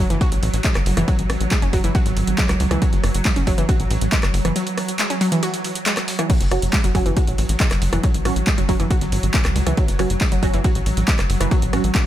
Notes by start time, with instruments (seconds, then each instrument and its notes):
Already playing: synth drone F#3
0.10 analog synth bass F#1, synth arpeggio sound E3, closed hi-hat
0.21 synth arpeggio sound F#4, kick, closed hi-hat, ride
0.32 analog synth bass A1, closed hi-hat
0.43 analog synth bass A1, open hi-hat, ride
0.53 analog synth bass A1, snare, closed hi-hat
0.64 synth arpeggio sound G#3, kick, snare, clap, closed hi-hat, ride
0.75 analog synth bass F#1, cross-stick, clap, closed hi-hat
0.86 analog synth bass F#1, open hi-hat, ride
0.97 analog synth bass F#1, synth arpeggio sound E3, cross-stick, closed hi-hat
1.08 synth arpeggio sound F#3, kick, closed hi-hat, ride
1.19 analog synth bass A1, closed hi-hat, ride
1.30 analog synth bass A1, cross-stick, snare, open hi-hat, ride
1.41 analog synth bass A1, closed hi-hat
1.51 synth arpeggio sound G#3, kick, snare, clap, closed hi-hat, ride
1.62 analog synth bass F#1, synth arpeggio sound C#4, closed hi-hat
1.73 analog synth bass F#1, synth arpeggio sound F#3, kick, open hi-hat, ride
1.84 analog synth bass F#1, synth arpeggio sound E3, closed hi-hat, ride
1.95 synth arpeggio sound F#4, kick, closed hi-hat, ride
2.06 analog synth bass G#1, snare, closed hi-hat
2.17 analog synth bass G#1, open hi-hat, ride
2.27 analog synth bass G#1, closed hi-hat
2.38 synth arpeggio sound G#3, kick, snare, clap, closed hi-hat, ride
2.49 analog synth bass C#2, cross-stick, clap, closed hi-hat
2.60 analog synth bass C#2, open hi-hat, ride
2.71 analog synth bass C#2, synth arpeggio sound E3, cross-stick, closed hi-hat
2.82 synth arpeggio sound F#3, kick, closed hi-hat, ride
2.93 analog synth bass F#1, snare, closed hi-hat
3.04 analog synth bass F#1, cross-stick, open hi-hat, ride
3.14 analog synth bass F#1, closed hi-hat
3.25 synth arpeggio sound G#3, kick, snare, clap, closed hi-hat, open hi-hat
3.36 analog synth bass F#1, synth arpeggio sound C#4, closed hi-hat
3.47 analog synth bass F#1, synth arpeggio sound F#3, kick, open hi-hat, ride
3.58 analog synth bass F#1, synth arpeggio sound E3, closed hi-hat
3.69 synth arpeggio sound F#4, kick, closed hi-hat, ride
3.80 analog synth bass A1, closed hi-hat
3.91 analog synth bass A1, open hi-hat, ride
4.01 analog synth bass A1, snare, closed hi-hat
4.12 synth arpeggio sound G#3, kick, snare, clap, closed hi-hat, ride
4.23 analog synth bass F#1, cross-stick, clap, closed hi-hat
4.34 analog synth bass F#1, open hi-hat, ride
4.45 analog synth bass F#1, synth arpeggio sound E3, cross-stick, closed hi-hat
4.56 synth arpeggio sound F#3, closed hi-hat, ride
4.67 closed hi-hat, ride
4.78 cross-stick, snare, open hi-hat, ride
4.88 closed hi-hat
4.99 synth arpeggio sound G#3, snare, clap, closed hi-hat, ride
5.10 synth arpeggio sound C#4, closed hi-hat
5.21 synth arpeggio sound F#3, open hi-hat, ride
5.32 synth arpeggio sound E3, closed hi-hat, ride
5.43 synth arpeggio sound F#4, closed hi-hat, ride
5.54 snare, closed hi-hat
5.64 open hi-hat, ride
5.75 closed hi-hat
5.86 synth arpeggio sound G#3, snare, clap, closed hi-hat, ride
5.97 cross-stick, clap, closed hi-hat
6.08 snare, open hi-hat
6.19 synth arpeggio sound E3, cross-stick, closed hi-hat
6.30 synth arpeggio sound F#3, synth drone F#3, kick, closed hi-hat, crash, ride
6.41 analog synth bass F#1, snare, closed hi-hat
6.51 analog synth bass F#1, synth stab F#3 C#4 F#4, cross-stick, open hi-hat, ride
6.62 analog synth bass F#1, closed hi-hat
6.73 synth arpeggio sound G#3, kick, snare, clap, closed hi-hat, open hi-hat
6.84 analog synth bass F#1, synth arpeggio sound F#3, closed hi-hat
6.95 analog synth bass F#1, synth arpeggio sound F#3, synth stab F#3 C#4 F#4, kick, open hi-hat, ride
7.06 analog synth bass F#1, synth arpeggio sound E3, closed hi-hat
7.17 synth arpeggio sound F#4, kick, closed hi-hat, ride
7.27 analog synth bass A1, closed hi-hat
7.38 analog synth bass A1, open hi-hat, ride
7.49 analog synth bass A1, snare, closed hi-hat
7.60 synth arpeggio sound G#3, kick, snare, clap, closed hi-hat, ride
7.71 analog synth bass F#1, cross-stick, clap, closed hi-hat
7.82 analog synth bass F#1, open hi-hat, ride
7.93 analog synth bass F#1, synth arpeggio sound E3, cross-stick, closed hi-hat
8.03 synth arpeggio sound F#3, kick, closed hi-hat, ride
8.14 analog synth bass A1, closed hi-hat, ride
8.25 analog synth bass A1, synth stab F#3 C#4 F#4, cross-stick, snare, open hi-hat, ride
8.36 analog synth bass A1, closed hi-hat
8.47 synth arpeggio sound G#3, kick, snare, clap, closed hi-hat, ride
8.58 analog synth bass F#1, synth arpeggio sound F#3, closed hi-hat
8.69 analog synth bass F#1, synth stab F#3 C#4 F#4, synth arpeggio sound F#3, kick, open hi-hat, ride
8.80 analog synth bass F#1, synth arpeggio sound E3, closed hi-hat, ride
8.91 synth arpeggio sound F#4, kick, closed hi-hat, ride
9.01 analog synth bass G#1, snare, closed hi-hat
9.12 analog synth bass G#1, open hi-hat, ride
9.23 analog synth bass G#1, closed hi-hat
9.34 synth arpeggio sound G#3, kick, snare, clap, closed hi-hat, ride
9.45 analog synth bass C#2, cross-stick, clap, closed hi-hat
9.56 analog synth bass C#2, open hi-hat, ride
9.67 analog synth bass C#2, synth arpeggio sound E3, cross-stick, closed hi-hat
9.77 synth arpeggio sound F#3, kick, closed hi-hat, ride
9.88 analog synth bass F#1, snare, closed hi-hat
9.99 analog synth bass F#1, synth stab F#3 C#4 F#4, cross-stick, open hi-hat, ride
10.10 analog synth bass F#1, closed hi-hat
10.21 synth arpeggio sound G#3, kick, snare, clap, closed hi-hat, open hi-hat
10.32 analog synth bass F#1, synth arpeggio sound F#3, closed hi-hat
10.43 analog synth bass F#1, synth arpeggio sound F#3, synth stab F#3 C#4 F#4, kick, open hi-hat, ride
10.54 analog synth bass F#1, synth arpeggio sound E3, closed hi-hat
10.64 synth arpeggio sound F#4, kick, closed hi-hat, ride
10.75 analog synth bass A1, closed hi-hat
10.86 analog synth bass A1, open hi-hat, ride
10.97 analog synth bass A1, snare, closed hi-hat
11.08 synth arpeggio sound G#3, kick, snare, clap, closed hi-hat, ride
11.19 analog synth bass F#1, cross-stick, clap, closed hi-hat
11.30 analog synth bass F#1, open hi-hat, ride
11.40 analog synth bass F#1, synth arpeggio sound E3, cross-stick, closed hi-hat
11.51 synth arpeggio sound F#3, kick, closed hi-hat, ride
11.62 analog synth bass A1, closed hi-hat, ride
11.73 analog synth bass A1, synth stab F#3 C#4 F#4, cross-stick, snare, open hi-hat, ride
11.84 analog synth bass A1, closed hi-hat
11.95 synth arpeggio sound G#3, kick, snare, clap, closed hi-hat, ride